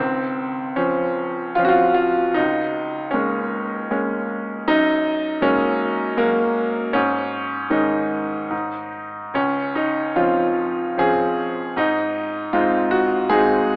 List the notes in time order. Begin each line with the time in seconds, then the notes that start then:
Already playing: C#2 C4
0.76 F3 C#4 C5
1.55 F3 C4 C#4 F4
1.65 F4 F#4
1.94 F4
2.34 C#2 D#4
3.11 G#3 A#3 C#4
3.91 G#3 A#3 C#4
4.68 F#2 D#4
5.41 F#3 G#3 A#3 C#4
6.17 F#3 G#3 A#3
6.93 G#2 C#4
7.70 D#3 G#3 C#4 D#4
8.51 G#2
9.34 C#2 C#4
9.75 D#4
10.16 F3 C4 C#4 F4
10.97 F3 C4 C#4 G#4
11.77 G#2 D#4
12.53 G#3 C4 D#4 F4
12.91 F#4
13.30 G#3 C4 D#4 G#4